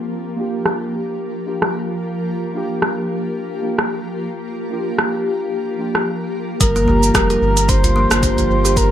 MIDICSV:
0, 0, Header, 1, 8, 480
1, 0, Start_track
1, 0, Key_signature, -2, "minor"
1, 0, Tempo, 540541
1, 106, Time_signature, 4, 2, 24, 8
1, 7915, End_track
2, 0, Start_track
2, 0, Title_t, "Soft synth lead"
2, 0, Program_c, 0, 80
2, 5866, Note_on_c, 0, 70, 94
2, 6312, Note_off_c, 0, 70, 0
2, 6348, Note_on_c, 0, 70, 101
2, 6826, Note_on_c, 0, 72, 109
2, 6839, Note_off_c, 0, 70, 0
2, 7787, Note_on_c, 0, 70, 100
2, 7800, Note_off_c, 0, 72, 0
2, 7915, Note_off_c, 0, 70, 0
2, 7915, End_track
3, 0, Start_track
3, 0, Title_t, "Ambient pad"
3, 0, Program_c, 1, 92
3, 0, Note_on_c, 1, 53, 68
3, 0, Note_on_c, 1, 58, 84
3, 0, Note_on_c, 1, 65, 72
3, 0, Note_on_c, 1, 67, 70
3, 0, Note_on_c, 1, 70, 77
3, 7915, Note_off_c, 1, 53, 0
3, 7915, Note_off_c, 1, 58, 0
3, 7915, Note_off_c, 1, 65, 0
3, 7915, Note_off_c, 1, 67, 0
3, 7915, Note_off_c, 1, 70, 0
3, 7915, End_track
4, 0, Start_track
4, 0, Title_t, "Synth keys"
4, 0, Program_c, 2, 88
4, 325, Note_on_c, 2, 58, 69
4, 337, Note_on_c, 2, 62, 60
4, 348, Note_on_c, 2, 65, 63
4, 360, Note_on_c, 2, 67, 78
4, 1270, Note_off_c, 2, 58, 0
4, 1276, Note_off_c, 2, 62, 0
4, 1282, Note_off_c, 2, 65, 0
4, 1288, Note_off_c, 2, 67, 0
4, 1295, Note_on_c, 2, 58, 63
4, 1301, Note_on_c, 2, 62, 63
4, 1307, Note_on_c, 2, 65, 57
4, 1312, Note_on_c, 2, 67, 78
4, 1428, Note_off_c, 2, 58, 0
4, 1431, Note_off_c, 2, 62, 0
4, 1434, Note_off_c, 2, 65, 0
4, 1436, Note_off_c, 2, 67, 0
4, 2248, Note_on_c, 2, 58, 67
4, 2260, Note_on_c, 2, 62, 67
4, 2272, Note_on_c, 2, 65, 67
4, 2283, Note_on_c, 2, 67, 83
4, 3192, Note_off_c, 2, 58, 0
4, 3198, Note_off_c, 2, 62, 0
4, 3204, Note_off_c, 2, 65, 0
4, 3209, Note_off_c, 2, 67, 0
4, 3217, Note_on_c, 2, 58, 66
4, 3223, Note_on_c, 2, 62, 58
4, 3229, Note_on_c, 2, 65, 59
4, 3235, Note_on_c, 2, 67, 70
4, 3349, Note_off_c, 2, 58, 0
4, 3352, Note_off_c, 2, 62, 0
4, 3355, Note_off_c, 2, 65, 0
4, 3358, Note_off_c, 2, 67, 0
4, 4168, Note_on_c, 2, 58, 71
4, 4179, Note_on_c, 2, 62, 65
4, 4192, Note_on_c, 2, 65, 68
4, 4203, Note_on_c, 2, 67, 80
4, 5112, Note_off_c, 2, 58, 0
4, 5117, Note_off_c, 2, 62, 0
4, 5124, Note_off_c, 2, 65, 0
4, 5129, Note_off_c, 2, 67, 0
4, 5139, Note_on_c, 2, 58, 70
4, 5145, Note_on_c, 2, 62, 66
4, 5150, Note_on_c, 2, 65, 62
4, 5157, Note_on_c, 2, 67, 76
4, 5270, Note_off_c, 2, 58, 0
4, 5272, Note_off_c, 2, 62, 0
4, 5275, Note_off_c, 2, 65, 0
4, 5279, Note_off_c, 2, 67, 0
4, 6086, Note_on_c, 2, 58, 79
4, 6098, Note_on_c, 2, 62, 76
4, 6110, Note_on_c, 2, 65, 69
4, 6122, Note_on_c, 2, 67, 88
4, 7031, Note_off_c, 2, 58, 0
4, 7037, Note_off_c, 2, 62, 0
4, 7043, Note_off_c, 2, 65, 0
4, 7049, Note_off_c, 2, 67, 0
4, 7193, Note_on_c, 2, 58, 94
4, 7199, Note_on_c, 2, 62, 87
4, 7205, Note_on_c, 2, 65, 84
4, 7210, Note_on_c, 2, 67, 96
4, 7404, Note_off_c, 2, 58, 0
4, 7408, Note_off_c, 2, 62, 0
4, 7411, Note_off_c, 2, 65, 0
4, 7413, Note_off_c, 2, 67, 0
4, 7421, Note_on_c, 2, 58, 99
4, 7434, Note_on_c, 2, 62, 87
4, 7445, Note_on_c, 2, 65, 83
4, 7457, Note_on_c, 2, 67, 107
4, 7915, Note_off_c, 2, 58, 0
4, 7915, Note_off_c, 2, 62, 0
4, 7915, Note_off_c, 2, 65, 0
4, 7915, Note_off_c, 2, 67, 0
4, 7915, End_track
5, 0, Start_track
5, 0, Title_t, "Kalimba"
5, 0, Program_c, 3, 108
5, 5865, Note_on_c, 3, 55, 80
5, 5987, Note_off_c, 3, 55, 0
5, 6002, Note_on_c, 3, 58, 100
5, 6097, Note_off_c, 3, 58, 0
5, 6107, Note_on_c, 3, 58, 76
5, 6235, Note_off_c, 3, 58, 0
5, 6347, Note_on_c, 3, 55, 102
5, 6475, Note_off_c, 3, 55, 0
5, 6484, Note_on_c, 3, 67, 100
5, 6542, Note_off_c, 3, 67, 0
5, 6829, Note_on_c, 3, 62, 83
5, 6949, Note_off_c, 3, 62, 0
5, 6964, Note_on_c, 3, 65, 74
5, 7057, Note_off_c, 3, 65, 0
5, 7067, Note_on_c, 3, 58, 102
5, 7195, Note_off_c, 3, 58, 0
5, 7307, Note_on_c, 3, 62, 100
5, 7668, Note_off_c, 3, 62, 0
5, 7681, Note_on_c, 3, 67, 97
5, 7741, Note_off_c, 3, 67, 0
5, 7786, Note_on_c, 3, 58, 81
5, 7915, Note_off_c, 3, 58, 0
5, 7915, End_track
6, 0, Start_track
6, 0, Title_t, "Sub bass"
6, 0, Program_c, 4, 38
6, 5867, Note_on_c, 4, 31, 95
6, 6313, Note_off_c, 4, 31, 0
6, 6346, Note_on_c, 4, 29, 85
6, 6544, Note_off_c, 4, 29, 0
6, 6586, Note_on_c, 4, 31, 98
6, 7158, Note_off_c, 4, 31, 0
6, 7201, Note_on_c, 4, 31, 84
6, 7512, Note_off_c, 4, 31, 0
6, 7545, Note_on_c, 4, 31, 84
6, 7915, Note_off_c, 4, 31, 0
6, 7915, End_track
7, 0, Start_track
7, 0, Title_t, "Udu"
7, 6099, Note_on_c, 9, 64, 83
7, 6188, Note_off_c, 9, 64, 0
7, 6954, Note_on_c, 9, 64, 90
7, 7043, Note_off_c, 9, 64, 0
7, 7435, Note_on_c, 9, 64, 83
7, 7523, Note_off_c, 9, 64, 0
7, 7915, End_track
8, 0, Start_track
8, 0, Title_t, "Drums"
8, 582, Note_on_c, 9, 37, 71
8, 670, Note_off_c, 9, 37, 0
8, 1439, Note_on_c, 9, 37, 73
8, 1528, Note_off_c, 9, 37, 0
8, 2506, Note_on_c, 9, 37, 69
8, 2594, Note_off_c, 9, 37, 0
8, 3361, Note_on_c, 9, 37, 74
8, 3450, Note_off_c, 9, 37, 0
8, 4426, Note_on_c, 9, 37, 70
8, 4515, Note_off_c, 9, 37, 0
8, 5283, Note_on_c, 9, 37, 70
8, 5371, Note_off_c, 9, 37, 0
8, 5866, Note_on_c, 9, 36, 110
8, 5867, Note_on_c, 9, 42, 69
8, 5868, Note_on_c, 9, 82, 52
8, 5955, Note_off_c, 9, 36, 0
8, 5955, Note_off_c, 9, 42, 0
8, 5957, Note_off_c, 9, 82, 0
8, 6003, Note_on_c, 9, 82, 34
8, 6092, Note_off_c, 9, 82, 0
8, 6243, Note_on_c, 9, 82, 62
8, 6332, Note_off_c, 9, 82, 0
8, 6346, Note_on_c, 9, 36, 101
8, 6347, Note_on_c, 9, 37, 83
8, 6347, Note_on_c, 9, 42, 71
8, 6349, Note_on_c, 9, 82, 54
8, 6435, Note_off_c, 9, 36, 0
8, 6436, Note_off_c, 9, 37, 0
8, 6436, Note_off_c, 9, 42, 0
8, 6437, Note_off_c, 9, 82, 0
8, 6483, Note_on_c, 9, 42, 30
8, 6484, Note_on_c, 9, 82, 30
8, 6572, Note_off_c, 9, 42, 0
8, 6573, Note_off_c, 9, 82, 0
8, 6722, Note_on_c, 9, 42, 43
8, 6723, Note_on_c, 9, 82, 68
8, 6810, Note_off_c, 9, 42, 0
8, 6812, Note_off_c, 9, 82, 0
8, 6826, Note_on_c, 9, 36, 109
8, 6827, Note_on_c, 9, 42, 71
8, 6829, Note_on_c, 9, 82, 55
8, 6914, Note_off_c, 9, 36, 0
8, 6916, Note_off_c, 9, 42, 0
8, 6917, Note_off_c, 9, 82, 0
8, 6962, Note_on_c, 9, 42, 51
8, 6963, Note_on_c, 9, 82, 35
8, 7051, Note_off_c, 9, 42, 0
8, 7052, Note_off_c, 9, 82, 0
8, 7203, Note_on_c, 9, 37, 87
8, 7203, Note_on_c, 9, 42, 35
8, 7204, Note_on_c, 9, 82, 70
8, 7291, Note_off_c, 9, 37, 0
8, 7291, Note_off_c, 9, 42, 0
8, 7293, Note_off_c, 9, 82, 0
8, 7305, Note_on_c, 9, 36, 110
8, 7308, Note_on_c, 9, 42, 67
8, 7309, Note_on_c, 9, 82, 58
8, 7394, Note_off_c, 9, 36, 0
8, 7396, Note_off_c, 9, 42, 0
8, 7398, Note_off_c, 9, 82, 0
8, 7442, Note_on_c, 9, 42, 33
8, 7444, Note_on_c, 9, 82, 35
8, 7531, Note_off_c, 9, 42, 0
8, 7533, Note_off_c, 9, 82, 0
8, 7684, Note_on_c, 9, 82, 64
8, 7772, Note_off_c, 9, 82, 0
8, 7785, Note_on_c, 9, 36, 107
8, 7787, Note_on_c, 9, 42, 65
8, 7788, Note_on_c, 9, 82, 59
8, 7874, Note_off_c, 9, 36, 0
8, 7876, Note_off_c, 9, 42, 0
8, 7877, Note_off_c, 9, 82, 0
8, 7915, End_track
0, 0, End_of_file